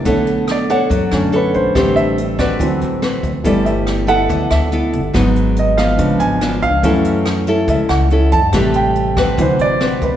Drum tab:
HH |xxxxxxxx|xxxxxxxx|xxxxxxxx|xxxxxxxx|
SD |--r--r--|r--r--r-|--r--r--|r--r--r-|
BD |o---o---|o--oo--o|o---o---|o---o---|

HH |xxxxxxxx|xxxxxxxx|
SD |--r--r--|r--r--r-|
BD |o---o---|o--oo--o|